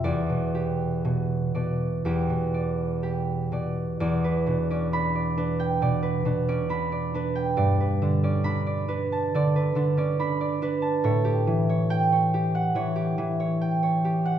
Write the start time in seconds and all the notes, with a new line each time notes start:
Already playing: E5
0.04 E2 D5
0.29 B2
0.55 G4
1.05 B2
1.55 B2 D5
2.05 E2 G4
2.30 B2
2.54 D5
3.03 G4
3.52 B2 D5
4.00 E2 D5
4.24 B4
4.46 B2 D4
4.70 C#4 D5
4.93 D4 B5
5.15 D5
5.37 D4 B4
5.60 G5
5.82 B2 D5
6.03 B4
6.25 B2 D4
6.48 C#4 D5
6.69 D4 B5
6.92 D5
7.14 D4 B4
7.35 G5
7.57 G2 D5
7.80 B4
8.02 D3 D4
8.23 C#4 D5
8.44 D4 B5
8.66 D5
8.88 D4 B4
9.12 A5
9.34 D3 D5
9.56 B4
9.75 D3 D4
9.97 C#4 D5
10.19 D4 B5
10.41 D5
10.62 D4 B4
10.82 A5
11.04 A2 C#5
11.25 G4
11.47 E3
11.69 C#5
11.90 G5
12.12 C#5
12.34 G4
12.55 F#5
12.75 E3 C#5
12.96 G4
13.18 E3
13.40 C#5
13.61 G5
13.83 C#5
14.05 G4
14.25 F#5